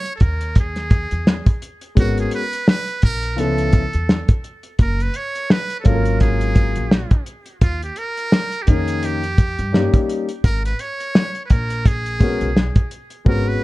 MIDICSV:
0, 0, Header, 1, 5, 480
1, 0, Start_track
1, 0, Tempo, 705882
1, 1339, Time_signature, 4, 2, 24, 8
1, 9273, End_track
2, 0, Start_track
2, 0, Title_t, "Muted trumpet"
2, 0, Program_c, 0, 59
2, 0, Note_on_c, 0, 73, 117
2, 81, Note_off_c, 0, 73, 0
2, 108, Note_on_c, 0, 69, 66
2, 148, Note_on_c, 0, 70, 95
2, 158, Note_off_c, 0, 69, 0
2, 383, Note_off_c, 0, 70, 0
2, 401, Note_on_c, 0, 68, 83
2, 1083, Note_off_c, 0, 68, 0
2, 1359, Note_on_c, 0, 66, 92
2, 1479, Note_off_c, 0, 66, 0
2, 1495, Note_on_c, 0, 68, 75
2, 1581, Note_off_c, 0, 68, 0
2, 1597, Note_on_c, 0, 71, 104
2, 1811, Note_off_c, 0, 71, 0
2, 1829, Note_on_c, 0, 71, 105
2, 2048, Note_off_c, 0, 71, 0
2, 2071, Note_on_c, 0, 70, 100
2, 2306, Note_on_c, 0, 69, 92
2, 2317, Note_off_c, 0, 70, 0
2, 3023, Note_off_c, 0, 69, 0
2, 3273, Note_on_c, 0, 70, 96
2, 3415, Note_on_c, 0, 71, 95
2, 3425, Note_off_c, 0, 70, 0
2, 3511, Note_on_c, 0, 73, 111
2, 3521, Note_off_c, 0, 71, 0
2, 3750, Note_on_c, 0, 71, 98
2, 3760, Note_off_c, 0, 73, 0
2, 3942, Note_off_c, 0, 71, 0
2, 3946, Note_on_c, 0, 69, 66
2, 3990, Note_on_c, 0, 70, 97
2, 4000, Note_off_c, 0, 69, 0
2, 4222, Note_off_c, 0, 70, 0
2, 4226, Note_on_c, 0, 68, 87
2, 4915, Note_off_c, 0, 68, 0
2, 5188, Note_on_c, 0, 65, 96
2, 5313, Note_off_c, 0, 65, 0
2, 5328, Note_on_c, 0, 67, 96
2, 5427, Note_on_c, 0, 70, 118
2, 5437, Note_off_c, 0, 67, 0
2, 5862, Note_on_c, 0, 67, 68
2, 5872, Note_off_c, 0, 70, 0
2, 5908, Note_on_c, 0, 68, 102
2, 5918, Note_off_c, 0, 67, 0
2, 6155, Note_on_c, 0, 67, 100
2, 6166, Note_off_c, 0, 68, 0
2, 6867, Note_off_c, 0, 67, 0
2, 7106, Note_on_c, 0, 70, 109
2, 7232, Note_off_c, 0, 70, 0
2, 7245, Note_on_c, 0, 71, 93
2, 7347, Note_on_c, 0, 73, 116
2, 7357, Note_off_c, 0, 71, 0
2, 7783, Note_off_c, 0, 73, 0
2, 7791, Note_on_c, 0, 71, 70
2, 7833, Note_on_c, 0, 70, 104
2, 7844, Note_off_c, 0, 71, 0
2, 8073, Note_on_c, 0, 68, 94
2, 8083, Note_off_c, 0, 70, 0
2, 8786, Note_off_c, 0, 68, 0
2, 9032, Note_on_c, 0, 70, 99
2, 9168, Note_on_c, 0, 71, 92
2, 9178, Note_off_c, 0, 70, 0
2, 9273, Note_off_c, 0, 71, 0
2, 9273, End_track
3, 0, Start_track
3, 0, Title_t, "Grand piano"
3, 0, Program_c, 1, 0
3, 1327, Note_on_c, 1, 56, 66
3, 1333, Note_on_c, 1, 59, 57
3, 1338, Note_on_c, 1, 61, 60
3, 1346, Note_on_c, 1, 66, 53
3, 1350, Note_on_c, 1, 70, 65
3, 1628, Note_off_c, 1, 56, 0
3, 1631, Note_off_c, 1, 59, 0
3, 1634, Note_off_c, 1, 61, 0
3, 1638, Note_off_c, 1, 66, 0
3, 1640, Note_off_c, 1, 70, 0
3, 2287, Note_on_c, 1, 53, 56
3, 2293, Note_on_c, 1, 59, 55
3, 2299, Note_on_c, 1, 61, 51
3, 2303, Note_on_c, 1, 64, 54
3, 2311, Note_on_c, 1, 69, 66
3, 2588, Note_off_c, 1, 53, 0
3, 2591, Note_off_c, 1, 59, 0
3, 2594, Note_off_c, 1, 61, 0
3, 2596, Note_off_c, 1, 64, 0
3, 2600, Note_off_c, 1, 69, 0
3, 3969, Note_on_c, 1, 54, 65
3, 3975, Note_on_c, 1, 58, 59
3, 3980, Note_on_c, 1, 61, 66
3, 3984, Note_on_c, 1, 65, 63
3, 3991, Note_on_c, 1, 69, 60
3, 4036, Note_off_c, 1, 69, 0
3, 4037, Note_on_c, 1, 70, 78
3, 4653, Note_off_c, 1, 54, 0
3, 4656, Note_off_c, 1, 58, 0
3, 4659, Note_off_c, 1, 61, 0
3, 4661, Note_off_c, 1, 65, 0
3, 4688, Note_off_c, 1, 70, 0
3, 5892, Note_on_c, 1, 51, 64
3, 5898, Note_on_c, 1, 58, 55
3, 5903, Note_on_c, 1, 61, 51
3, 5909, Note_on_c, 1, 63, 52
3, 5915, Note_on_c, 1, 70, 61
3, 6247, Note_off_c, 1, 51, 0
3, 6249, Note_off_c, 1, 58, 0
3, 6252, Note_off_c, 1, 61, 0
3, 6255, Note_off_c, 1, 63, 0
3, 6258, Note_off_c, 1, 70, 0
3, 6613, Note_on_c, 1, 55, 69
3, 6618, Note_on_c, 1, 58, 62
3, 6623, Note_on_c, 1, 61, 60
3, 6630, Note_on_c, 1, 63, 64
3, 6635, Note_on_c, 1, 67, 74
3, 6967, Note_off_c, 1, 55, 0
3, 6969, Note_off_c, 1, 58, 0
3, 6972, Note_off_c, 1, 61, 0
3, 6976, Note_off_c, 1, 63, 0
3, 6978, Note_off_c, 1, 67, 0
3, 8292, Note_on_c, 1, 56, 65
3, 8297, Note_on_c, 1, 59, 63
3, 8302, Note_on_c, 1, 61, 69
3, 8308, Note_on_c, 1, 66, 67
3, 8314, Note_on_c, 1, 70, 74
3, 8475, Note_off_c, 1, 56, 0
3, 8477, Note_off_c, 1, 59, 0
3, 8480, Note_off_c, 1, 61, 0
3, 8483, Note_off_c, 1, 66, 0
3, 8485, Note_off_c, 1, 70, 0
3, 9008, Note_on_c, 1, 56, 69
3, 9015, Note_on_c, 1, 59, 59
3, 9020, Note_on_c, 1, 61, 61
3, 9026, Note_on_c, 1, 66, 68
3, 9031, Note_on_c, 1, 71, 71
3, 9273, Note_off_c, 1, 56, 0
3, 9273, Note_off_c, 1, 59, 0
3, 9273, Note_off_c, 1, 61, 0
3, 9273, Note_off_c, 1, 66, 0
3, 9273, Note_off_c, 1, 71, 0
3, 9273, End_track
4, 0, Start_track
4, 0, Title_t, "Upright bass"
4, 0, Program_c, 2, 32
4, 144, Note_on_c, 2, 39, 95
4, 733, Note_off_c, 2, 39, 0
4, 762, Note_on_c, 2, 40, 78
4, 949, Note_off_c, 2, 40, 0
4, 1341, Note_on_c, 2, 32, 82
4, 1529, Note_off_c, 2, 32, 0
4, 2063, Note_on_c, 2, 34, 74
4, 2304, Note_off_c, 2, 34, 0
4, 2304, Note_on_c, 2, 37, 96
4, 2600, Note_off_c, 2, 37, 0
4, 2682, Note_on_c, 2, 40, 74
4, 2869, Note_off_c, 2, 40, 0
4, 3259, Note_on_c, 2, 30, 92
4, 3448, Note_off_c, 2, 30, 0
4, 3983, Note_on_c, 2, 32, 87
4, 4573, Note_off_c, 2, 32, 0
4, 4602, Note_on_c, 2, 34, 74
4, 4789, Note_off_c, 2, 34, 0
4, 5180, Note_on_c, 2, 39, 91
4, 5368, Note_off_c, 2, 39, 0
4, 5902, Note_on_c, 2, 41, 88
4, 6492, Note_off_c, 2, 41, 0
4, 6521, Note_on_c, 2, 43, 82
4, 6708, Note_off_c, 2, 43, 0
4, 7101, Note_on_c, 2, 32, 89
4, 7289, Note_off_c, 2, 32, 0
4, 7825, Note_on_c, 2, 34, 84
4, 8413, Note_off_c, 2, 34, 0
4, 8443, Note_on_c, 2, 35, 71
4, 8630, Note_off_c, 2, 35, 0
4, 9019, Note_on_c, 2, 32, 92
4, 9208, Note_off_c, 2, 32, 0
4, 9273, End_track
5, 0, Start_track
5, 0, Title_t, "Drums"
5, 36, Note_on_c, 9, 42, 46
5, 104, Note_off_c, 9, 42, 0
5, 136, Note_on_c, 9, 42, 76
5, 142, Note_on_c, 9, 36, 91
5, 204, Note_off_c, 9, 42, 0
5, 210, Note_off_c, 9, 36, 0
5, 276, Note_on_c, 9, 42, 61
5, 344, Note_off_c, 9, 42, 0
5, 376, Note_on_c, 9, 42, 86
5, 381, Note_on_c, 9, 36, 87
5, 444, Note_off_c, 9, 42, 0
5, 449, Note_off_c, 9, 36, 0
5, 516, Note_on_c, 9, 42, 46
5, 519, Note_on_c, 9, 38, 35
5, 584, Note_off_c, 9, 42, 0
5, 587, Note_off_c, 9, 38, 0
5, 615, Note_on_c, 9, 42, 64
5, 618, Note_on_c, 9, 36, 90
5, 683, Note_off_c, 9, 42, 0
5, 686, Note_off_c, 9, 36, 0
5, 755, Note_on_c, 9, 42, 49
5, 823, Note_off_c, 9, 42, 0
5, 864, Note_on_c, 9, 38, 95
5, 932, Note_off_c, 9, 38, 0
5, 995, Note_on_c, 9, 42, 56
5, 996, Note_on_c, 9, 36, 92
5, 1063, Note_off_c, 9, 42, 0
5, 1064, Note_off_c, 9, 36, 0
5, 1102, Note_on_c, 9, 42, 69
5, 1170, Note_off_c, 9, 42, 0
5, 1233, Note_on_c, 9, 42, 52
5, 1301, Note_off_c, 9, 42, 0
5, 1338, Note_on_c, 9, 42, 90
5, 1339, Note_on_c, 9, 36, 113
5, 1406, Note_off_c, 9, 42, 0
5, 1407, Note_off_c, 9, 36, 0
5, 1479, Note_on_c, 9, 42, 48
5, 1547, Note_off_c, 9, 42, 0
5, 1573, Note_on_c, 9, 42, 73
5, 1641, Note_off_c, 9, 42, 0
5, 1718, Note_on_c, 9, 42, 51
5, 1786, Note_off_c, 9, 42, 0
5, 1821, Note_on_c, 9, 38, 124
5, 1889, Note_off_c, 9, 38, 0
5, 1954, Note_on_c, 9, 42, 47
5, 2022, Note_off_c, 9, 42, 0
5, 2053, Note_on_c, 9, 42, 80
5, 2062, Note_on_c, 9, 36, 84
5, 2121, Note_off_c, 9, 42, 0
5, 2130, Note_off_c, 9, 36, 0
5, 2194, Note_on_c, 9, 42, 51
5, 2262, Note_off_c, 9, 42, 0
5, 2298, Note_on_c, 9, 42, 80
5, 2366, Note_off_c, 9, 42, 0
5, 2435, Note_on_c, 9, 42, 49
5, 2503, Note_off_c, 9, 42, 0
5, 2533, Note_on_c, 9, 42, 64
5, 2538, Note_on_c, 9, 36, 88
5, 2601, Note_off_c, 9, 42, 0
5, 2606, Note_off_c, 9, 36, 0
5, 2673, Note_on_c, 9, 42, 51
5, 2741, Note_off_c, 9, 42, 0
5, 2783, Note_on_c, 9, 38, 90
5, 2851, Note_off_c, 9, 38, 0
5, 2914, Note_on_c, 9, 42, 53
5, 2916, Note_on_c, 9, 36, 92
5, 2982, Note_off_c, 9, 42, 0
5, 2984, Note_off_c, 9, 36, 0
5, 3020, Note_on_c, 9, 42, 58
5, 3088, Note_off_c, 9, 42, 0
5, 3150, Note_on_c, 9, 42, 51
5, 3218, Note_off_c, 9, 42, 0
5, 3255, Note_on_c, 9, 42, 85
5, 3258, Note_on_c, 9, 36, 99
5, 3323, Note_off_c, 9, 42, 0
5, 3326, Note_off_c, 9, 36, 0
5, 3400, Note_on_c, 9, 42, 50
5, 3468, Note_off_c, 9, 42, 0
5, 3494, Note_on_c, 9, 42, 78
5, 3562, Note_off_c, 9, 42, 0
5, 3639, Note_on_c, 9, 42, 55
5, 3707, Note_off_c, 9, 42, 0
5, 3742, Note_on_c, 9, 38, 114
5, 3810, Note_off_c, 9, 38, 0
5, 3877, Note_on_c, 9, 42, 50
5, 3945, Note_off_c, 9, 42, 0
5, 3976, Note_on_c, 9, 42, 80
5, 3983, Note_on_c, 9, 36, 92
5, 4044, Note_off_c, 9, 42, 0
5, 4051, Note_off_c, 9, 36, 0
5, 4116, Note_on_c, 9, 42, 55
5, 4184, Note_off_c, 9, 42, 0
5, 4217, Note_on_c, 9, 42, 81
5, 4222, Note_on_c, 9, 36, 89
5, 4285, Note_off_c, 9, 42, 0
5, 4290, Note_off_c, 9, 36, 0
5, 4358, Note_on_c, 9, 42, 44
5, 4426, Note_off_c, 9, 42, 0
5, 4456, Note_on_c, 9, 42, 66
5, 4459, Note_on_c, 9, 36, 92
5, 4524, Note_off_c, 9, 42, 0
5, 4527, Note_off_c, 9, 36, 0
5, 4593, Note_on_c, 9, 42, 48
5, 4661, Note_off_c, 9, 42, 0
5, 4702, Note_on_c, 9, 38, 97
5, 4770, Note_off_c, 9, 38, 0
5, 4833, Note_on_c, 9, 42, 54
5, 4836, Note_on_c, 9, 36, 92
5, 4901, Note_off_c, 9, 42, 0
5, 4904, Note_off_c, 9, 36, 0
5, 4939, Note_on_c, 9, 42, 67
5, 5007, Note_off_c, 9, 42, 0
5, 5071, Note_on_c, 9, 42, 49
5, 5139, Note_off_c, 9, 42, 0
5, 5177, Note_on_c, 9, 42, 89
5, 5179, Note_on_c, 9, 36, 121
5, 5245, Note_off_c, 9, 42, 0
5, 5247, Note_off_c, 9, 36, 0
5, 5320, Note_on_c, 9, 42, 52
5, 5388, Note_off_c, 9, 42, 0
5, 5412, Note_on_c, 9, 42, 80
5, 5480, Note_off_c, 9, 42, 0
5, 5558, Note_on_c, 9, 42, 52
5, 5626, Note_off_c, 9, 42, 0
5, 5660, Note_on_c, 9, 38, 112
5, 5728, Note_off_c, 9, 38, 0
5, 5794, Note_on_c, 9, 42, 46
5, 5862, Note_off_c, 9, 42, 0
5, 5895, Note_on_c, 9, 42, 77
5, 5902, Note_on_c, 9, 36, 88
5, 5963, Note_off_c, 9, 42, 0
5, 5970, Note_off_c, 9, 36, 0
5, 6036, Note_on_c, 9, 42, 57
5, 6104, Note_off_c, 9, 42, 0
5, 6137, Note_on_c, 9, 42, 83
5, 6205, Note_off_c, 9, 42, 0
5, 6279, Note_on_c, 9, 42, 48
5, 6347, Note_off_c, 9, 42, 0
5, 6378, Note_on_c, 9, 42, 65
5, 6380, Note_on_c, 9, 36, 95
5, 6446, Note_off_c, 9, 42, 0
5, 6448, Note_off_c, 9, 36, 0
5, 6517, Note_on_c, 9, 42, 46
5, 6585, Note_off_c, 9, 42, 0
5, 6626, Note_on_c, 9, 38, 85
5, 6694, Note_off_c, 9, 38, 0
5, 6756, Note_on_c, 9, 42, 51
5, 6757, Note_on_c, 9, 36, 83
5, 6824, Note_off_c, 9, 42, 0
5, 6825, Note_off_c, 9, 36, 0
5, 6864, Note_on_c, 9, 42, 61
5, 6932, Note_off_c, 9, 42, 0
5, 6995, Note_on_c, 9, 42, 52
5, 7063, Note_off_c, 9, 42, 0
5, 7100, Note_on_c, 9, 36, 113
5, 7100, Note_on_c, 9, 42, 91
5, 7168, Note_off_c, 9, 36, 0
5, 7168, Note_off_c, 9, 42, 0
5, 7245, Note_on_c, 9, 42, 56
5, 7313, Note_off_c, 9, 42, 0
5, 7338, Note_on_c, 9, 42, 80
5, 7406, Note_off_c, 9, 42, 0
5, 7482, Note_on_c, 9, 42, 53
5, 7550, Note_off_c, 9, 42, 0
5, 7584, Note_on_c, 9, 38, 108
5, 7652, Note_off_c, 9, 38, 0
5, 7717, Note_on_c, 9, 42, 47
5, 7785, Note_off_c, 9, 42, 0
5, 7818, Note_on_c, 9, 42, 77
5, 7823, Note_on_c, 9, 36, 93
5, 7886, Note_off_c, 9, 42, 0
5, 7891, Note_off_c, 9, 36, 0
5, 7958, Note_on_c, 9, 42, 59
5, 8026, Note_off_c, 9, 42, 0
5, 8061, Note_on_c, 9, 42, 89
5, 8062, Note_on_c, 9, 36, 98
5, 8129, Note_off_c, 9, 42, 0
5, 8130, Note_off_c, 9, 36, 0
5, 8200, Note_on_c, 9, 42, 44
5, 8268, Note_off_c, 9, 42, 0
5, 8300, Note_on_c, 9, 36, 94
5, 8300, Note_on_c, 9, 42, 67
5, 8368, Note_off_c, 9, 36, 0
5, 8368, Note_off_c, 9, 42, 0
5, 8438, Note_on_c, 9, 42, 48
5, 8506, Note_off_c, 9, 42, 0
5, 8544, Note_on_c, 9, 38, 89
5, 8612, Note_off_c, 9, 38, 0
5, 8673, Note_on_c, 9, 42, 54
5, 8676, Note_on_c, 9, 36, 88
5, 8741, Note_off_c, 9, 42, 0
5, 8744, Note_off_c, 9, 36, 0
5, 8779, Note_on_c, 9, 42, 66
5, 8847, Note_off_c, 9, 42, 0
5, 8910, Note_on_c, 9, 42, 48
5, 8978, Note_off_c, 9, 42, 0
5, 9018, Note_on_c, 9, 36, 118
5, 9086, Note_off_c, 9, 36, 0
5, 9273, End_track
0, 0, End_of_file